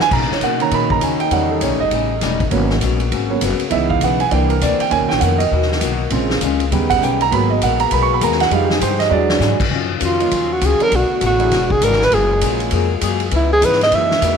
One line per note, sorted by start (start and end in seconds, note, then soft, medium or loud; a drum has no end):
0.00 0.12 G#5 loud
0.00 muted upright bass stroke soft
0.09 0.31 B2 soft
0.09 0.29 B2 loud
0.09 2.48 C#3 medium
0.09 0.32 D#3 soft
0.09 1.29 A#3 medium
0.09 0.32 A#3 soft
0.09 2.48 D#4 medium
0.09 0.30 A#5 medium
0.09 kick medium
0.09 crash medium
0.14 0.32 C#4 soft
0.21 snare soft
0.31 0.42 C#5 medium
0.31 muted upright bass stroke soft
0.31 snare soft
0.41 0.61 B2 medium
0.41 0.70 C#3 medium
0.41 0.62 D#3 medium
0.41 0.62 A#3 medium
0.41 0.62 C#4 medium
0.41 0.61 F#5 medium
0.41 kick soft
0.41 hi-hat pedal medium
0.41 ride medium
0.60 1.28 D#3 soft
0.60 1.29 A#3 soft
0.60 1.29 C#4 medium
0.60 0.72 A#5 medium
0.60 ride soft
0.71 1.00 A#2 medium
0.71 0.91 B2 soft
0.71 0.91 D#3 medium
0.71 0.92 A#3 medium
0.71 0.92 C#4 soft
0.71 0.91 B5 medium
0.71 kick soft
0.71 ride medium
0.90 1.02 A#5 medium
0.90 kick medium
1.01 1.30 D#2 loud
1.01 1.21 B2 medium
1.01 1.21 D#3 medium
1.01 1.22 A#3 medium
1.01 1.22 C#4 medium
1.01 1.20 G#5 medium
1.01 kick soft
1.01 hi-hat pedal medium
1.01 ride medium
1.20 1.31 G5 medium
1.20 ride soft
1.29 1.60 E2 loud
1.29 1.51 A2 soft
1.29 1.77 D#3 medium
1.29 2.50 G3 medium
1.29 1.78 G3 soft
1.29 1.52 G3 soft
1.29 2.49 A3 medium
1.29 1.78 C#4 medium
1.29 1.50 F#5 medium
1.29 kick soft
1.29 ride medium
1.33 1.52 C#4 medium
1.33 1.52 D#4 soft
1.50 1.61 A4 medium
1.61 1.71 B1 medium
1.61 1.82 A2 medium
1.61 1.82 G3 medium
1.61 1.82 C#4 medium
1.61 1.83 D#4 medium
1.61 1.80 C#5 medium
1.61 kick soft
1.61 hi-hat pedal medium
1.61 ride medium
1.71 1.81 A1 medium
1.80 1.91 G1 medium
1.80 2.42 D#5 medium
1.91 2.20 A1 medium
1.91 2.12 A2 medium
1.91 2.12 G3 soft
1.91 2.12 C#4 medium
1.91 2.13 D#4 medium
1.91 kick soft
1.91 ride medium
2.21 2.51 E1 loud
2.21 2.42 A2 medium
2.21 2.42 G3 medium
2.21 2.42 C#4 medium
2.21 2.42 D#4 medium
2.21 kick soft
2.21 snare soft
2.21 hi-hat pedal medium
2.21 ride medium
2.40 kick medium
2.40 ride soft
2.50 2.80 G#1 loud
2.50 2.71 G#2 soft
2.50 4.29 C#3 medium
2.50 2.73 F#3 soft
2.50 2.72 F#3 soft
2.50 3.70 A#3 medium
2.50 2.73 A#3 medium
2.50 3.70 B3 medium
2.50 2.74 B3 soft
2.50 2.72 B3 soft
2.50 2.74 C#4 medium
2.50 3.70 F#4 medium
2.50 kick soft
2.50 ride medium
2.54 2.72 C#4 medium
2.70 snare soft
2.81 3.10 A#1 medium
2.81 3.02 G#2 medium
2.81 3.02 F#3 medium
2.81 3.02 B3 medium
2.81 3.02 C#4 medium
2.81 kick soft
2.81 hi-hat pedal medium
2.81 ride medium
3.00 ride soft
3.11 3.41 G#1 medium
3.11 3.31 G#2 medium
3.11 3.32 F#3 medium
3.11 3.32 B3 medium
3.11 3.33 C#4 medium
3.11 kick soft
3.11 ride medium
3.30 3.40 F#3 soft
3.30 3.40 A#3 soft
3.30 3.41 B3 soft
3.30 3.41 C#4 medium
3.41 3.59 F#1 medium
3.41 3.62 G#2 medium
3.41 3.62 F#3 medium
3.41 3.62 B3 medium
3.41 3.63 C#4 medium
3.41 kick soft
3.41 hi-hat pedal medium
3.41 ride medium
3.60 muted upright bass stroke soft
3.60 ride soft
3.70 4.01 C#2 loud
3.70 3.92 C#3 soft
3.70 4.17 E3 medium
3.70 4.90 E3 medium
3.70 4.30 G#3 medium
3.70 3.92 G#3 soft
3.70 4.31 B3 medium
3.70 4.18 B3 soft
3.70 3.93 B3 soft
3.70 4.18 D#4 medium
3.70 3.90 E5 medium
3.70 kick soft
3.70 ride medium
3.74 3.93 E4 medium
3.89 4.01 F5 medium
3.89 kick medium
4.01 4.31 B1 medium
4.01 4.22 C#3 medium
4.01 4.22 G#3 medium
4.01 4.23 B3 medium
4.01 4.23 E4 medium
4.01 4.21 F#5 medium
4.01 kick soft
4.01 hi-hat pedal medium
4.01 ride medium
4.20 4.31 G#5 medium
4.20 ride soft
4.29 4.61 C2 medium
4.29 4.52 C3 medium
4.29 4.91 D3 medium
4.29 4.54 E3 medium
4.29 4.90 A#3 medium
4.29 4.54 A#3 soft
4.29 4.91 C4 medium
4.29 4.54 D4 medium
4.29 4.31 F#5 soft
4.29 kick soft
4.29 ride medium
4.33 4.52 E3 medium
4.33 4.53 A#3 soft
4.33 4.53 D4 medium
4.33 4.51 G5 medium
4.50 4.61 A#4 medium
4.50 ride medium
4.61 4.79 D2 loud
4.61 4.82 C3 medium
4.61 4.82 E3 medium
4.61 4.82 A#3 medium
4.61 4.83 D4 medium
4.61 4.80 D5 medium
4.61 kick soft
4.61 hi-hat pedal medium
4.61 ride medium
4.79 4.92 G5 medium
4.79 muted upright bass stroke soft
4.79 ride medium
4.90 5.02 D#2 medium
4.90 6.10 B2 medium
4.90 5.12 B2 soft
4.90 5.37 D#3 soft
4.90 6.10 D#3 medium
4.90 5.38 A#3 soft
4.90 6.70 A#3 medium
4.90 5.38 C#4 medium
4.90 6.11 F#4 medium
4.90 5.10 G#5 loud
4.90 kick soft
4.90 ride medium
4.94 5.13 F#3 soft
4.94 5.13 A#3 medium
4.94 5.13 D#4 soft
5.00 5.10 B1 medium
5.09 5.21 A#1 medium
5.09 5.21 G5 medium
5.09 snare medium
5.20 5.51 F2 loud
5.20 5.42 B2 medium
5.20 5.42 F#3 medium
5.20 5.42 A#3 medium
5.20 5.42 D#4 medium
5.20 5.39 F#5 medium
5.20 kick soft
5.20 hi-hat pedal medium
5.20 ride medium
5.38 5.78 D#5 medium
5.38 ride medium
5.51 5.81 D#2 medium
5.51 5.72 B2 medium
5.51 5.72 F#3 medium
5.51 5.72 A#3 medium
5.51 5.73 D#4 medium
5.51 kick soft
5.62 snare soft
5.72 snare soft
5.81 6.11 B1 loud
5.81 6.02 B2 medium
5.81 6.02 F#3 medium
5.81 6.03 A#3 medium
5.81 6.03 D#4 medium
5.81 kick soft
5.81 hi-hat pedal medium
5.81 ride medium
6.10 6.41 A#1 loud
6.10 6.31 A#2 medium
6.10 7.30 C#3 medium
6.10 6.34 C#3 soft
6.10 6.71 G#3 medium
6.10 6.32 G#3 soft
6.10 6.34 G#3 soft
6.10 6.34 C4 medium
6.10 6.32 C#4 medium
6.10 6.71 F4 medium
6.10 6.32 F4 medium
6.10 kick soft
6.10 ride medium
6.30 snare medium
6.41 6.71 C#2 loud
6.41 6.62 A#2 medium
6.41 6.62 G#3 medium
6.41 6.63 C#4 medium
6.41 6.63 F4 medium
6.41 kick soft
6.41 hi-hat pedal medium
6.41 ride medium
6.60 ride medium
6.71 7.01 D#2 medium
6.71 7.18 C#3 medium
6.71 6.92 D#3 medium
6.71 7.31 G3 medium
6.71 7.19 G3 soft
6.71 7.30 B3 medium
6.71 7.19 B3 medium
6.71 6.92 C#4 medium
6.71 7.32 D#4 medium
6.71 6.93 G4 medium
6.71 6.93 B4 medium
6.71 kick soft
6.71 ride medium
6.90 7.01 F#5 loud
6.90 kick medium
6.90 ride medium
7.02 7.31 B1 loud
7.02 7.22 D#3 medium
7.02 7.22 C#4 medium
7.02 7.22 G4 medium
7.02 7.23 B4 medium
7.02 7.21 G5 medium
7.02 kick soft
7.02 hi-hat pedal soft
7.21 7.32 A#5 loud
7.21 ride medium
7.31 7.61 G#1 loud
7.31 7.53 F#3 medium
7.31 7.51 G#3 soft
7.31 7.54 A#3 soft
7.31 8.51 A#3 medium
7.31 8.51 B3 medium
7.31 7.54 B3 medium
7.31 7.52 B3 soft
7.31 8.51 F#4 medium
7.31 7.52 F#4 soft
7.31 9.53 G#4 medium
7.31 7.53 A#4 medium
7.31 7.51 B5 medium
7.31 kick soft
7.31 ride medium
7.50 7.61 D#5 medium
7.62 7.91 A#1 loud
7.62 7.82 G#3 medium
7.62 7.82 B3 medium
7.62 7.83 F#4 medium
7.62 7.83 A#4 medium
7.62 7.81 F#5 medium
7.62 kick soft
7.62 hi-hat pedal medium
7.62 ride medium
7.80 7.91 A#5 medium
7.80 ride medium
7.91 8.21 B1 medium
7.91 8.12 G#3 soft
7.91 8.12 B3 medium
7.91 8.13 F#4 medium
7.91 8.13 A#4 medium
7.91 8.02 B5 medium
7.91 kick soft
7.91 ride medium
8.03 8.12 C#6 medium
8.14 8.23 B5 medium
8.21 8.50 D#2 loud
8.21 8.41 G#3 medium
8.21 8.42 B3 medium
8.21 8.42 F#4 medium
8.21 8.42 A#4 medium
8.21 8.41 A#5 medium
8.21 kick soft
8.21 hi-hat pedal medium
8.21 ride medium
8.32 snare soft
8.40 8.52 F#5 medium
8.40 snare medium
8.40 ride medium
8.50 8.81 F2 medium
8.50 8.71 F3 soft
8.50 9.12 F3 medium
8.50 8.74 G3 medium
8.50 8.72 G#3 soft
8.50 8.74 G#3 soft
8.50 9.11 D#4 medium
8.50 8.72 D#4 soft
8.50 8.75 D#4 medium
8.50 9.12 G4 medium
8.50 8.72 G4 soft
8.50 8.71 F5 medium
8.50 kick soft
8.50 ride medium
8.66 8.68 G4 soft
8.70 8.82 G#4 medium
8.70 snare medium
8.80 9.10 G2 medium
8.80 9.01 F3 medium
8.80 9.01 G#3 medium
8.80 9.01 D#4 medium
8.80 9.02 G4 medium
8.80 9.00 C5 medium
8.80 kick soft
8.80 hi-hat pedal medium
8.80 ride medium
8.99 9.11 D#5 medium
8.99 snare soft
8.99 ride medium
9.09 9.39 E2 medium
9.09 9.30 E3 medium
9.09 9.53 E3 medium
9.09 9.57 F#3 medium
9.09 9.57 G#3 soft
9.09 9.31 G#3 medium
9.09 9.53 D4 medium
9.09 9.58 D4 medium
9.09 9.31 D4 medium
9.09 9.53 F#4 medium
9.09 9.32 F#4 medium
9.09 9.62 D5 medium
9.30 snare medium
9.40 9.58 G#2 loud
9.40 9.61 E3 medium
9.40 9.61 G#3 medium
9.40 9.62 D4 medium
9.40 9.62 F#4 medium
9.40 snare medium
9.40 hi-hat pedal medium
9.60 muted upright bass stroke soft
9.60 kick medium
9.60 crash medium
9.70 10.01 F#2 loud
9.70 9.91 D#3 soft
9.70 10.90 D#3 medium
9.70 10.90 F3 medium
9.70 9.91 F#3 medium
9.70 10.90 C#4 medium
9.70 9.91 C#4 medium
9.70 10.90 F4 medium
9.70 9.92 F4 medium
9.70 kick soft
10.00 10.31 F2 medium
10.00 10.21 D#3 medium
10.00 10.21 F#3 medium
10.00 10.21 C#4 medium
10.00 10.21 F4 medium
10.00 kick soft
10.00 hi-hat pedal medium
10.00 ride medium
10.06 10.54 F4 medium
10.19 10.30 F#3 medium
10.19 10.30 A#3 medium
10.19 10.30 C#4 medium
10.19 10.31 D#4 medium
10.19 10.31 F4 medium
10.19 ride medium
10.30 10.61 D#2 medium
10.30 10.51 D#3 soft
10.30 10.51 F#3 medium
10.30 10.52 C#4 medium
10.30 10.52 F4 medium
10.30 kick soft
10.30 ride medium
10.53 10.67 F#4 medium
10.61 10.79 C#2 loud
10.61 10.82 D#3 medium
10.61 10.82 F#3 medium
10.61 10.82 C#4 medium
10.61 10.82 F4 medium
10.61 kick soft
10.61 hi-hat pedal medium
10.61 ride medium
10.66 10.85 G#4 medium
10.80 10.91 F#3 medium
10.80 10.91 B3 medium
10.80 10.91 C#4 medium
10.80 10.91 D4 medium
10.80 10.92 A4 medium
10.80 10.97 A#4 loud
10.80 muted upright bass stroke soft
10.80 ride medium
10.91 11.09 B1 loud
10.91 11.11 B2 soft
10.91 11.51 D3 medium
10.91 11.51 A3 medium
10.91 11.12 A3 soft
10.91 11.51 B3 medium
10.91 11.12 D4 soft
10.91 12.11 F#4 medium
10.91 11.12 F#4 soft
10.91 kick soft
10.91 ride medium
10.96 11.24 F#4 medium
11.10 muted upright bass stroke soft
11.21 11.51 A1 loud
11.21 11.41 B2 medium
11.21 11.42 A3 medium
11.21 11.42 D4 medium
11.21 11.42 F#4 medium
11.21 kick soft
11.21 hi-hat pedal medium
11.21 ride medium
11.26 11.73 F#4 medium
11.38 11.50 F#3 medium
11.38 11.50 B3 medium
11.38 11.50 D4 medium
11.38 11.51 E4 medium
11.38 11.51 G#4 medium
11.38 ride soft
11.51 11.81 E1 medium
11.51 11.71 E3 medium
11.51 12.12 E3 medium
11.51 11.72 G#3 medium
11.51 13.31 G#3 medium
11.51 11.72 D4 medium
11.51 12.12 D4 medium
11.51 11.73 F#4 medium
11.51 kick soft
11.51 snare soft
11.51 ride medium
11.70 11.86 G#4 loud
11.70 kick medium
11.81 12.11 G#1 loud
11.81 12.02 E3 medium
11.81 12.02 G#3 medium
11.81 12.03 D4 medium
11.81 12.03 F#4 medium
11.81 12.05 A#4 medium
11.81 kick soft
11.81 hi-hat pedal medium
11.81 ride medium
11.92 snare soft
12.01 12.16 B4 loud
12.01 snare medium
12.12 12.41 F#1 loud
12.12 12.32 F#3 soft
12.12 13.31 A#3 medium
12.12 12.32 A#3 soft
12.12 13.31 F4 medium
12.12 12.32 F4 medium
12.12 13.31 G#4 medium
12.12 12.43 G#4 medium
12.12 12.33 G#4 soft
12.12 kick soft
12.12 ride medium
12.41 12.71 A#1 medium
12.41 12.86 F#3 medium
12.41 12.62 F#3 medium
12.41 12.87 A#3 soft
12.41 12.62 A#3 medium
12.41 12.87 C#4 medium
12.41 12.62 F4 medium
12.41 12.87 F4 medium
12.41 12.87 G#4 medium
12.41 12.63 G#4 medium
12.41 kick soft
12.41 hi-hat pedal medium
12.41 ride medium
12.60 ride medium
12.71 13.01 F2 medium
12.71 12.92 F#3 medium
12.71 12.93 A#3 medium
12.71 12.93 F4 medium
12.71 kick soft
12.71 ride medium
12.75 12.93 G#4 medium
13.01 13.31 F#2 loud
13.01 13.22 F#3 medium
13.01 13.22 A#3 medium
13.01 13.22 F4 medium
13.01 13.23 G#4 medium
13.01 kick soft
13.01 hi-hat pedal medium
13.01 ride medium
13.20 ride medium
13.31 13.61 C#2 medium
13.31 13.52 C#3 soft
13.31 13.92 C#3 medium
13.31 13.52 E3 soft
13.31 13.90 E3 medium
13.31 13.92 B3 medium
13.31 13.53 B3 soft
13.31 13.92 D#4 medium
13.31 13.53 D#4 soft
13.31 kick soft
13.31 ride medium
13.36 13.51 E4 medium
13.53 13.67 G#4 loud
13.61 13.91 G#2 medium
13.61 13.82 C#3 medium
13.61 13.78 E3 medium
13.61 13.82 E3 medium
13.61 13.79 B3 medium
13.61 13.82 B3 medium
13.61 13.79 C#4 medium
13.61 13.79 D#4 medium
13.61 13.82 D#4 medium
13.61 13.79 G#4 medium
13.61 13.82 B4 medium
13.61 kick soft
13.61 hi-hat pedal medium
13.61 ride medium
13.73 snare soft
13.81 13.97 D#5 loud
13.81 snare soft
13.81 ride medium
13.90 14.11 F#2 medium
13.90 14.21 F#2 medium
13.90 14.11 E3 medium
13.90 14.37 E3 medium
13.90 14.09 E3 medium
13.90 14.37 G#3 medium
13.90 14.37 A#3 medium
13.90 14.12 A#3 soft
13.90 14.09 A#3 medium
13.90 14.09 C#4 medium
13.90 14.12 D#4 medium
13.90 14.09 D#4 medium
13.90 14.37 E4 medium
13.90 14.10 G#4 medium
13.90 kick soft
13.90 ride medium
13.95 14.37 E5 medium
14.11 snare medium
14.21 14.37 E2 medium
14.21 14.37 F#2 medium
14.21 14.37 E3 medium
14.21 14.37 A#3 medium
14.21 14.37 D#4 medium
14.21 kick soft
14.21 hi-hat pedal medium
14.21 ride medium